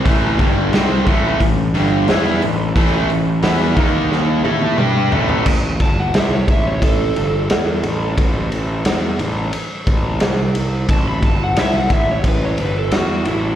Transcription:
0.05 picked electric bass A1, overdriven electric guitar A2 E3 A3, kick, open hi-hat
0.39 picked electric bass G1, overdriven electric guitar G2 D3 G3, kick, open hi-hat
0.72 picked electric bass C2, overdriven electric guitar C3 G3 C4, snare, open hi-hat
1.06 picked electric bass A1, overdriven electric guitar A2 E3 A3, kick, open hi-hat
1.40 picked electric bass A1, overdriven electric guitar A2 E3, kick, open hi-hat
1.74 picked electric bass G1, overdriven electric guitar G2 D3 G3, open hi-hat
2.08 picked electric bass E2, overdriven electric guitar E3 B3 E4, snare, open hi-hat
2.42 picked electric bass A1, overdriven electric guitar A2 E3, open hi-hat
2.76 picked electric bass A1, overdriven electric guitar A2 E3 A3, kick, open hi-hat
3.09 picked electric bass A1, overdriven electric guitar A2 E3, open hi-hat
3.43 picked electric bass E2, overdriven electric guitar E3 B3 E4, snare, open hi-hat
3.76 picked electric bass D#2, overdriven electric guitar D#3 A#3 D#4, kick, open hi-hat
4.12 snare
4.44 picked electric bass A2, overdriven electric guitar A3 E4 A4, high tom
4.62 high tom
4.78 picked electric bass G2, overdriven electric guitar G3 D4 G4, mid tom
5.12 picked electric bass A1, overdriven electric guitar A2 E3 A3, floor tom
5.29 floor tom
5.46 picked electric bass A1, kick, crash
5.80 picked electric bass G1, electric slide guitar A5, kick, ride
5.99 electric slide guitar F#5
6.14 picked electric bass C2, electric slide guitar E5, snare, ride
6.34 electric slide guitar C#5
6.48 picked electric bass A1, electric slide guitar E5, kick, ride
6.67 electric slide guitar C#5
6.82 picked electric bass A1, electric slide guitar A4, kick, ride
7.16 picked electric bass G1, ride
7.50 picked electric bass E2, snare, ride
7.83 picked electric bass A1, ride
8.18 picked electric bass A1, kick, ride
8.52 picked electric bass A1, ride
8.85 picked electric bass E2, snare, ride
9.19 picked electric bass A1, ride
9.53 muted picked electric bass stroke, ride
9.87 picked electric bass A1, kick, ride
10.20 picked electric bass C2, snare, ride
10.55 ride
10.89 picked electric bass A1, electric slide guitar A5, kick, ride
11.08 electric slide guitar B5
11.22 picked electric bass G1, electric slide guitar A5, kick, ride
11.43 electric slide guitar F#5
11.56 picked electric bass C2, electric slide guitar E5, snare, ride
11.77 electric slide guitar F#5
11.90 picked electric bass A1, electric slide guitar E5, kick, ride
12.11 electric slide guitar C#5
12.24 picked electric bass A1, kick, ride
12.28 electric slide guitar B4
12.45 electric slide guitar C#5
12.58 picked electric bass G1, electric slide guitar B4, ride
12.79 electric slide guitar A4
12.91 picked electric bass E2, electric slide guitar F#4, snare, ride
13.25 picked electric bass A1, electric slide guitar E4, ride

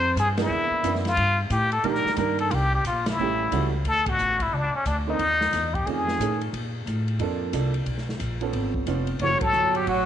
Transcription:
Already playing: upright bass F2, muted trumpet C5
0.16 upright bass G2, muted trumpet G#4, kick, hi-hat pedal, ride
0.38 upright piano E3 A#3 B3 D4 G#4, snare, ride
0.42 muted trumpet E4
0.49 upright bass E2
0.70 muted upright bass stroke
0.83 upright bass F#2, upright piano E3 A#3 B3 D4 E4, kick, hi-hat pedal, ride
0.95 snare
1.05 muted trumpet F4, snare, ride
1.17 upright bass G2, kick, ride
1.50 upright bass A2, muted trumpet G4, kick, hi-hat pedal, ride
1.72 muted trumpet A4, ride
1.83 upright bass A#2, upright piano D#3 G3 A#3 D4 G4, muted trumpet A#4, kick, ride
1.95 snare
2.05 muted upright bass stroke, snare
2.16 upright bass G2, upright piano D#3 G3 A#3 D4 A#4, muted trumpet A#4, kick, hi-hat pedal, ride
2.39 muted trumpet A4, ride
2.51 upright bass C2, muted trumpet F4, kick, ride
2.55 muted trumpet G4
2.75 muted trumpet G4
2.84 upright bass A#1, muted trumpet F4, kick, hi-hat pedal, ride
3.06 muted trumpet E4, snare, ride
3.19 upright bass A1, upright piano E3 G3 A3 C#4 G4
3.51 upright bass C#2, upright piano E3 G3 A3 C#4 F#4, kick, hi-hat pedal, ride
3.85 upright bass D2, muted trumpet A4, kick, ride
4.06 muted trumpet F#4, kick, ride
4.19 upright bass A1, hi-hat pedal
4.40 muted trumpet E4, kick, ride
4.51 upright bass C#2, muted trumpet D4, kick
4.74 muted trumpet C#4, muted upright bass stroke
4.85 upright bass D2, muted trumpet D4, kick, hi-hat pedal, ride
5.07 upright piano D3 A#3 C4 D#4, muted trumpet D#4
5.19 upright bass D#2, kick, ride
5.41 snare
5.52 upright bass E2, kick, snare, hi-hat pedal, ride
5.74 muted trumpet G4, kick, ride
5.86 upright bass F2, upright piano D#3 A3 C#4 F4, muted trumpet G#4, kick, ride
6.08 snare
6.19 upright bass A2, upright piano D#3 A3 C#4 G#4, kick, hi-hat pedal, ride
6.41 ride
6.53 upright bass A#2, kick, ride
6.86 upright bass A2, kick, hi-hat pedal, ride
7.08 ride
7.19 upright bass F2, upright piano F3 A#3 D4 A4, kick, ride
7.53 upright bass C2, upright piano F3 A#3 D4 A4, kick, hi-hat pedal, ride
7.74 ride
7.86 upright bass B1, kick, ride
7.98 snare
8.09 snare
8.19 upright bass A#1, kick, hi-hat pedal, ride
8.41 upright piano F3 B3 C#4 A4, ride
8.53 upright bass G#1, kick, ride
8.74 kick
8.86 upright bass F1, upright piano F3 B3 C#4 F4, kick, hi-hat pedal, ride
9.07 ride
9.19 upright bass F#1, upright piano E3 A3 C#4 F#4, tenor saxophone F#3, muted trumpet C#5, kick, ride
9.41 muted trumpet A4, muted upright bass stroke, kick, ride
9.53 upright bass G1, hi-hat pedal
9.75 muted trumpet G4, ride
9.87 upright bass A1, muted trumpet F#4, kick, ride

